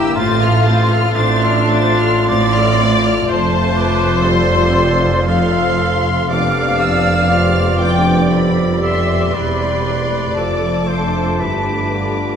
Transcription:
0.00 0.21 G2 medium
0.00 0.17 A#3 medium
0.00 0.18 A#3 medium
0.00 0.13 E4 medium
0.00 0.17 E4 medium
0.00 0.21 E4 medium
0.00 0.15 G4 medium
0.00 0.16 G4 medium
0.00 0.17 G4 medium
0.00 0.21 A#4 medium
0.00 0.17 A#5 medium
0.00 0.17 E6 medium
0.15 1.04 A1 medium
0.15 1.03 A2 medium
0.15 3.31 A2 medium
0.15 3.28 A3 medium
0.15 6.29 A3 medium
0.15 0.40 C4 medium
0.15 1.12 F4 loud
0.15 1.17 F4 medium
0.15 3.24 F4 medium
0.15 6.25 F4 medium
0.15 0.40 C5 medium
0.15 2.98 C6 medium
0.15 0.40 A6 medium
0.42 0.66 A3 medium
0.42 0.66 A4 medium
0.42 0.66 F6 medium
0.65 2.79 C4 medium
0.65 0.91 C4 medium
0.65 0.91 C5 medium
0.65 0.90 A6 medium
0.90 1.15 A3 medium
0.90 1.16 A4 medium
0.90 1.15 F6 medium
1.14 2.16 A1 medium
1.14 2.15 A2 medium
1.14 1.40 C4 medium
1.14 2.28 D4 loud
1.14 2.28 D4 medium
1.14 2.27 A4 medium
1.14 1.40 C5 medium
1.14 1.40 A6 medium
1.41 1.71 A3 medium
1.41 1.71 A4 medium
1.41 1.70 F6 medium
1.69 2.00 C4 medium
1.69 4.74 F4 medium
1.69 2.00 C5 medium
1.69 2.00 A6 medium
1.99 2.29 A3 medium
1.99 2.29 A4 medium
1.99 2.28 F6 medium
2.28 3.17 A1 medium
2.28 3.17 A2 medium
2.28 2.54 C4 medium
2.28 4.23 A4 medium
2.28 2.54 C5 medium
2.28 3.27 D5 loud
2.28 3.01 D5 medium
2.28 2.53 A6 medium
2.54 2.81 A3 medium
2.54 2.81 A4 medium
2.54 2.80 F6 medium
2.80 3.74 C4 medium
2.80 3.05 C4 medium
2.80 3.04 C5 medium
2.80 3.05 A6 medium
3.04 3.27 A3 medium
3.04 3.28 A4 medium
3.04 3.28 F6 medium
3.28 6.25 F1 medium
3.28 6.28 F2 medium
3.28 6.25 F2 medium
3.28 4.19 A3 medium
3.28 5.31 F4 medium
3.28 5.23 C5 medium
3.28 3.72 C5 medium
3.28 5.28 C5 loud
3.28 4.19 A5 medium
3.28 3.71 C6 medium
3.74 4.23 B4 medium
3.74 4.23 D6 medium
4.22 4.73 G3 medium
4.22 5.30 G3 medium
4.22 5.25 A4 medium
4.22 5.26 A4 medium
4.22 5.25 C6 medium
4.22 5.26 C6 medium
4.74 6.28 F3 medium
4.74 8.65 F4 medium
5.27 6.13 F3 medium
5.27 6.26 A4 medium
5.27 6.33 A4 medium
5.27 6.12 A4 medium
5.27 6.26 F5 medium
5.27 6.26 C6 medium
6.28 9.30 F1 medium
6.28 9.29 F2 medium
6.28 9.37 F2 medium
6.28 8.27 A3 medium
6.28 6.81 A3 medium
6.28 9.33 B3 medium
6.28 7.31 D4 medium
6.28 10.32 G4 medium
6.28 9.33 D5 medium
6.28 7.77 F5 medium
6.28 7.77 F5 loud
6.28 6.79 D6 medium
6.28 7.30 F6 medium
6.79 7.29 G3 medium
6.79 7.30 E6 medium
7.28 7.83 F3 medium
7.28 8.32 F4 medium
7.28 8.30 G4 soft
7.28 8.03 D6 medium
7.28 7.81 F6 medium
7.80 8.34 E3 medium
7.80 9.38 D4 soft
7.80 8.31 G5 medium
7.80 8.30 D6 medium
8.31 8.85 F3 medium
8.31 9.32 G3 medium
8.31 9.85 G4 soft
8.31 9.34 A4 medium
8.31 8.82 B5 medium
8.31 9.31 D6 medium
8.82 9.34 G3 medium
8.82 9.37 B3 soft
8.82 9.30 E5 medium
8.82 9.35 E5 medium
8.82 10.34 C6 medium
9.33 10.36 E1 medium
9.33 10.36 E2 medium
9.33 10.41 E2 medium
9.33 9.84 G3 soft
9.33 10.07 G3 soft
9.33 10.37 C4 soft
9.33 10.08 G4 soft
9.33 10.34 B4 soft
9.33 10.88 D5 medium
9.33 10.89 D5 medium
9.33 10.37 B5 soft
9.85 12.36 A3 medium
9.85 10.41 E4 soft
9.85 10.41 G4 soft
10.36 11.38 F1 soft
10.36 11.38 F2 soft
10.36 11.45 F2 soft
10.36 11.36 F3 soft
10.36 12.36 A3 soft
10.36 12.36 F4 soft
10.36 10.88 A4 medium
10.36 10.85 A4 soft
10.36 12.36 A5 soft
10.36 11.39 D6 soft
10.88 11.93 D4 soft
10.88 11.93 F4 soft
10.88 11.40 A4 soft
10.88 11.44 A4 soft
10.88 11.42 C5 soft
10.88 11.40 C5 medium
11.39 12.36 G1 soft
11.39 12.36 G2 soft
11.39 11.92 E3 soft
11.39 11.94 G4 soft
11.39 12.36 G4 soft
11.39 12.36 B4 soft
11.39 12.36 B4 medium
11.39 12.36 D6 soft
11.94 12.36 D3 soft
11.94 12.36 D4 soft
11.94 12.36 F4 soft

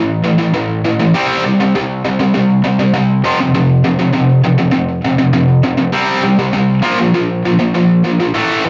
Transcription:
0.00 0.21 A2 medium
0.00 0.22 E3 medium
0.24 0.38 A2 medium
0.24 0.37 E3 medium
0.39 0.53 A2 medium
0.39 0.53 E3 medium
0.54 0.81 A2 medium
0.54 0.81 E3 medium
0.85 0.99 A2 medium
0.85 0.98 E3 medium
1.00 1.14 A2 medium
1.00 1.14 E3 medium
1.14 1.42 C3 loud
1.14 1.43 G3 loud
1.14 1.43 C4 loud
1.44 1.60 C3 medium
1.44 1.59 G3 medium
1.61 1.74 C3 medium
1.61 1.75 G3 medium
1.75 2.02 C3 medium
1.75 2.02 G3 medium
2.05 2.19 C3 medium
2.05 2.18 G3 medium
2.20 2.33 C3 medium
2.20 2.34 G3 medium
2.34 2.61 C3 medium
2.34 2.62 G3 medium
2.64 2.79 C3 medium
2.64 2.78 G3 medium
2.79 2.92 C3 medium
2.79 2.93 G3 medium
2.94 3.21 C3 medium
2.94 3.21 G3 medium
3.24 3.37 F2 medium
3.24 3.38 C3 medium
3.24 3.38 F3 loud
3.40 3.53 F2 medium
3.40 3.54 C3 medium
3.54 3.81 F2 medium
3.54 3.82 C3 medium
3.85 3.98 F2 medium
3.85 3.98 C3 medium
3.99 4.12 F2 medium
3.99 4.13 C3 medium
4.13 4.41 F2 medium
4.13 4.41 C3 medium
4.44 4.58 F2 medium
4.44 4.57 C3 medium
4.58 4.70 F2 medium
4.58 4.71 C3 medium
4.72 5.00 F2 medium
4.72 5.01 C3 medium
5.05 5.18 F2 medium
5.05 5.17 C3 medium
5.18 5.32 F2 medium
5.18 5.33 C3 medium
5.33 5.61 F2 medium
5.33 5.61 C3 medium
5.64 5.77 F2 medium
5.64 5.77 C3 medium
5.78 5.94 F2 medium
5.78 5.92 C3 medium
5.93 6.22 C3 medium
5.93 6.22 G3 medium
5.93 6.22 C4 loud
6.24 6.38 C3 medium
6.24 6.38 G3 medium
6.39 6.52 C3 medium
6.39 6.52 G3 medium
6.53 6.81 C3 medium
6.53 6.81 G3 medium
6.82 6.97 A#2 medium
6.82 6.97 F3 medium
6.82 6.97 A#3 loud
6.99 7.13 A#2 medium
6.99 7.14 F3 medium
7.14 7.42 A#2 medium
7.14 7.42 F3 medium
7.45 7.58 A#2 medium
7.45 7.58 F3 medium
7.59 7.73 A#2 medium
7.59 7.74 F3 medium
7.74 8.02 A#2 medium
7.74 8.02 F3 loud
8.04 8.19 A#2 medium
8.04 8.19 F3 medium
8.20 8.34 A#2 medium
8.20 8.35 F3 medium
8.34 8.63 A2 medium
8.34 8.63 E3 loud
8.34 8.63 A3 medium
8.64 8.70 A2 medium
8.64 8.70 E3 medium

